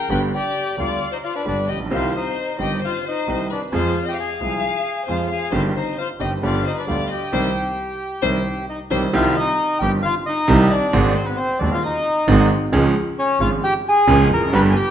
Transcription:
0.10 G1 G2 D3 G3 B3 G4 B4 G5 B5
0.34 G4 D5 G5
0.77 D2 D3 G3 B3 F4 G4 D5 F5
1.12 D#4 C5 D#5
1.24 F4 D5 F5
1.35 D4 B4 D5
1.45 G1 G2 D3 G3 B3 D4 G4 B4 D5
1.68 A#1 G4 D#5 G5
1.74 A1
1.80 A#1
1.85 B1
1.91 C2 C3 D#3 G3 C4 F4 G4 C5 F5
2.15 D#4 C5 D#5
2.58 G1 G2 D#3 G3 C4 G4 D#5 G5
2.83 F4 C5 F5
3.04 C5
3.08 D#4 D#5
3.27 C2 C3 D#3 G3 C4 G4
3.50 D4 B4 D5
3.71 F2 F3 G#3 C4 G#4 C5 F5
3.76 F4
4.06 G4 D#5 G5
4.17 G#4 F5 G#5
4.40 C2 C3 F3 G#3 C4 G#4
5.06 F2 F3 G#3 C4 G#4 C5 F5
5.11 F4
5.30 G#4 F5 G#5
5.51 G1 G2 D#3 G3 C4 G4 C5 F5
5.55 F4
5.75 D#4 C5 D#5
5.98 F4 C5 F5
6.19 G1 G2 D#3 G3 C4 G4 D#5 G5
6.24 G4
6.43 G1 G2 D3 G3 B3 F4 G4 D5 F5
6.65 D#4 C5 D#5
6.76 D4 B4 D5
6.87 D2 D3 G3 B3 F4 G4 D5 F5
7.10 G4 D#5 G5
7.32 C2 C3 D#3 G3 C5
8.22 C2 C3 D#3 G3 C5
8.69 D#4 D#5
8.90 C2 C3 D#3 G3 G4 C5 G5
9.13 C2 C3 D#3 G3 C4 F4 G4 F5
9.36 D#4 D#5
9.79 G1 G2 D#3 G3 C4 G4 G5
10.02 F4 F5
10.26 D#4 D#5
10.47 C2 C3 D#3 G3 C4 G4
10.70 D4 D5
10.93 G#1 G#2 D#3 G#3 C4 F#4
11.15 C4 C5
11.26 B3 B4
11.37 C4 C5
11.59 D#1 D#2 D#3 G#3 C4 D4 F#4 D5
11.72 F4 F5
11.83 D#4 D#5
12.28 G#1 G#2 D#3 G#3 C4 F#4
12.73 C#2 C#3 F3 G#3 C#4 G#4
13.19 C#4 C#5
13.40 G#1 G#2 F3 G#3 C#4 F4 G#4 F5
13.64 G4 G5
13.89 G#4 G#5
14.07 C#2 C#3 F3 G#3 C#4 G#4
14.30 F1 A#4 A#5
14.36 E2
14.42 F2
14.47 F#2
14.52 G1 G2 D3 G3 B3 G4 B4 B5
14.70 G#5
14.76 G4 G5

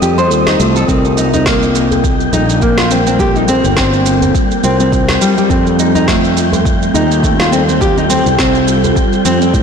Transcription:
Already playing: G3 C4 F4 G4 A4 D#5
0.00 F2 G3 C4 F4 G4 A4, shaker
0.18 C5, djembe slap, shaker
0.29 D#2 G3 C4 F4 C5, djembe slap, shaker
0.47 D#4, snare, djembe slap, djembe bass, shaker
0.59 C2 A3, shaker
0.76 A4, shaker
0.86 C2 G3 C4 F4 A#4 G5, kick, shaker
1.05 shaker
1.17 D#4, djembe tone, shaker
1.24 C4
1.34 D#4, djembe bass, shaker
1.46 A#3, kick, snare, shaker
1.63 shaker
1.70 F4
1.75 djembe slap, shaker
1.91 djembe tone, djembe bass, shaker
2.04 kick, shaker
2.20 shaker
2.33 A#1 D#4, djembe bass, shaker
2.50 shaker
2.61 A#3, kick, shaker
2.78 F4, snare, djembe tone, shaker
2.90 G3 C4 F4 A#4, shaker
3.07 C4, shaker
3.17 G3 C4 F4 G4 A4, kick, shaker
3.36 D#4, shaker
3.48 C4, djembe tone, shaker
3.64 G1, djembe bass, shaker
3.77 C4, kick, snare, shaker
3.93 djembe tone, shaker
4.06 djembe slap, shaker
4.22 djembe tone, djembe bass, shaker
4.35 kick, djembe slap, shaker
4.51 shaker
4.63 C2 G3 C4 F4 A#4, shaker
4.80 C4, djembe slap, shaker
4.92 G3 C4 F4 C5, kick, djembe slap, shaker
5.08 snare, djembe slap, djembe bass, shaker
5.21 G3, shaker
5.38 G3, shaker
5.48 F2 G3 C4 F4, kick, shaker
5.52 A4
5.67 shaker
5.79 D#4, djembe tone, shaker
5.95 D#4, djembe bass, shaker
6.08 A3, kick, snare, shaker
6.25 shaker
6.37 djembe slap, shaker
6.49 A4, djembe bass
6.53 djembe tone, shaker
6.65 kick, shaker
6.82 shaker
6.94 D#2 D#4, djembe bass, shaker
7.11 shaker
7.23 A3, kick, shaker
7.39 F4, snare, djembe tone, shaker
7.51 G3 C4 F4 A4, shaker
7.68 C4, shaker
7.79 G3 C4 F4 G4, kick, shaker
7.97 D#4, shaker
8.10 C4, djembe tone, shaker
8.25 C2, djembe bass, shaker
8.38 C4, kick, snare, shaker
8.55 djembe tone, shaker
8.67 djembe slap, shaker
8.84 djembe tone, djembe bass, shaker
8.96 kick, djembe slap, shaker
9.13 shaker
9.24 F2 G3 C4 F4 A4, shaker
9.41 C4, djembe slap, shaker
9.53 A2 G3 C4 F4 C5, kick, djembe slap, shaker

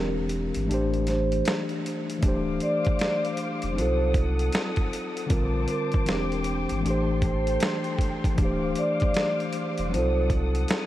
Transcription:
Already playing: E1 E3 G#3 C4 D4 G4 A#4
0.29 closed hi-hat
0.54 G#1, closed hi-hat
0.64 E3 A3
0.69 A1 D4 G4, closed hi-hat
0.74 C5
0.94 closed hi-hat
1.07 C5, snare, closed hi-hat
1.32 closed hi-hat
1.45 snare, closed hi-hat
1.69 closed hi-hat
1.86 closed hi-hat
2.10 closed hi-hat
2.18 E3 A3
2.23 D1 D4 G4 C5 F5 D6, kick, closed hi-hat
2.28 C5
2.60 D5, closed hi-hat
2.85 kick, closed hi-hat
2.99 snare, closed hi-hat
3.25 closed hi-hat
3.37 closed hi-hat
3.62 F1, closed hi-hat
3.71 F#3 C4
3.76 C2 D#4 F4 A4 C5 F#5 D#6, closed hi-hat
3.81 A4
4.14 A4, kick, closed hi-hat
4.39 closed hi-hat
4.53 snare, closed hi-hat
4.76 kick, closed hi-hat
4.93 closed hi-hat
5.17 closed hi-hat
5.26 D3 G3 C4 F4, closed hi-hat
5.30 A#1 A#4 C5 A5 D6, kick
5.68 A#4, closed hi-hat
5.92 kick, closed hi-hat
6.05 E1 E3 G#3 C4 D4 G5, snare, closed hi-hat
6.10 G4
6.32 closed hi-hat
6.44 closed hi-hat
6.69 G#1, closed hi-hat
6.80 E3 A3 G5 C6
6.84 A1 D4 G4 A4, closed hi-hat
6.90 C5
7.22 C5, kick, closed hi-hat
7.47 closed hi-hat
7.60 snare, closed hi-hat
7.84 closed hi-hat
7.99 kick, closed hi-hat
8.24 kick, closed hi-hat
8.35 D1 E3 A3 C5 D6, kick, closed hi-hat
8.39 D4 G4 F5
8.45 C5
8.75 D5, closed hi-hat
9.00 kick, closed hi-hat
9.14 snare, closed hi-hat
9.40 closed hi-hat
9.53 closed hi-hat
9.78 F1, closed hi-hat
9.89 F#3 C4 A4 F#5 D#6
9.93 C2 D#4 F4 C5, closed hi-hat
9.99 A4
10.30 A4, kick, closed hi-hat
10.55 closed hi-hat
10.68 snare, closed hi-hat

